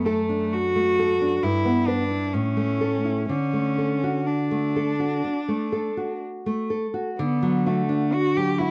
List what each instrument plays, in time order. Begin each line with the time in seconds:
Already playing: nylon-string guitar F#2 A3
0.05 cello A3, nylon-string guitar A4
0.29 nylon-string guitar D4
0.53 cello F#4
0.76 nylon-string guitar A3
0.99 nylon-string guitar A4
1.21 nylon-string guitar D4
1.43 nylon-string guitar G2, cello E4
1.65 nylon-string guitar B3
1.87 cello D4, nylon-string guitar B4
2.11 nylon-string guitar E4
2.34 nylon-string guitar A2, cello C#4
2.57 nylon-string guitar A3
2.81 nylon-string guitar A4
3.05 nylon-string guitar E4
3.29 nylon-string guitar D3, cello C#4
3.53 nylon-string guitar A3
3.78 nylon-string guitar A4
4.04 nylon-string guitar F#4
4.26 cello D4
4.51 nylon-string guitar A3
4.76 nylon-string guitar A4
4.99 nylon-string guitar F#4
5.24 nylon-string guitar D4
5.48 nylon-string guitar A3
5.72 nylon-string guitar A4
5.97 nylon-string guitar F#4
6.46 nylon-string guitar A3
6.70 nylon-string guitar A4
6.94 nylon-string guitar F#4
7.19 nylon-string guitar D3, cello B3
7.43 nylon-string guitar F#3
7.66 cello A3, nylon-string guitar F#4
7.89 nylon-string guitar D4
8.13 cello F#4
8.37 nylon-string guitar F#3, cello G4
8.59 cello E4, nylon-string guitar F#4